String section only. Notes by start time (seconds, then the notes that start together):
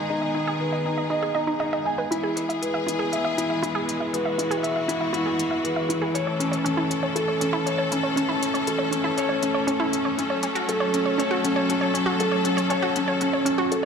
Already playing: D#3 G#3 B3 G#4
2.12 E3 G#3 B3 G#4
4.14 F#4
6.14 A3 C#4 A4
10.18 F#3 A4